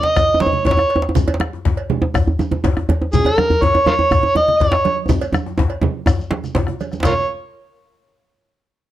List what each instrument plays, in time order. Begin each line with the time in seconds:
Already playing: harmonica D#5
0.03 bombo rim, djembe slap
0.16 bombo rim, bombo low, cowbell, djembe tone, djembe bass, shekere
0.29 high conga
0.34 djembe tone
0.40 harmonica C#5, djembe slap, high conga, shekere
0.46 djembe tone
0.53 djembe slap, high conga, low conga
0.65 harmonica C#5, bombo low, cowbell, djembe slap, djembe tone, djembe bass
0.71 djembe slap
0.77 bombo rim, djembe slap, djembe tone, high conga
0.79 djembe tone
0.90 cowbell
0.96 djembe tone
1.02 djembe slap
1.09 djembe tone
1.15 bombo low, low conga, djembe bass, shekere
1.28 cowbell, djembe tone
1.34 djembe slap
1.40 bombo rim, high conga, djembe tone
1.53 djembe tone
1.65 bombo rim, bombo low, djembe slap, djembe bass
1.77 cowbell
1.90 bombo rim, high conga, low conga
2.02 bombo rim, djembe tone
2.14 bombo rim, bombo low, cowbell, djembe tone, djembe bass, shekere
2.27 high conga, djembe bass
2.39 high conga, djembe tone, shekere
2.51 djembe slap, djembe tone, high conga, low conga
2.64 bombo low, cowbell, djembe slap, djembe tone, djembe bass
2.77 bombo rim, djembe tone, high conga
2.89 cowbell, high conga, djembe bass
3.02 djembe tone
3.13 harmonica G#4, bombo low, djembe tone, djembe bass, low conga, shekere
3.25 harmonica A#4, cowbell, djembe tone
3.38 bombo rim, djembe tone, high conga
3.50 djembe tone, djembe bass
3.62 harmonica C#5, bombo rim, bombo low, djembe slap, djembe tone, djembe bass
3.74 cowbell, djembe tone
3.86 harmonica F4 A#4 C#5, bombo rim, djembe tone, high conga
3.99 bombo rim, djembe tone
4.11 bombo rim, bombo low, cowbell, djembe tone, djembe bass, shekere
4.23 djembe tone, high conga
4.35 harmonica D#5, djembe tone, high conga, shekere
4.48 djembe slap, high conga, low conga
4.59 harmonica C#5, bombo low, cowbell, djembe slap, djembe bass
4.72 bombo rim, djembe slap, high conga
4.73 djembe slap, djembe tone
4.85 cowbell, high conga
5.09 bombo low, djembe tone, low conga, djembe bass, shekere
5.21 bombo rim, cowbell, shekere
5.33 bombo rim, djembe tone, high conga, shekere
5.46 djembe tone
5.58 bombo low, djembe slap, djembe tone, djembe bass
5.70 cowbell, djembe slap
5.82 djembe slap, djembe tone, high conga, low conga
6.06 bombo rim, bombo low, cowbell, djembe tone, shekere
6.08 djembe tone, djembe bass
6.20 high conga, shekere
6.31 djembe slap, high conga
6.44 bombo rim, low conga, shekere
6.55 bombo low, cowbell, djembe slap, low conga, djembe bass
6.67 bombo rim, djembe tone, low conga
6.80 cowbell, high conga, shekere
6.92 bombo rim, high conga, shekere
7.03 harmonica F4 A#4 C#5, bombo low, cowbell, djembe slap, djembe bass, low conga, shekere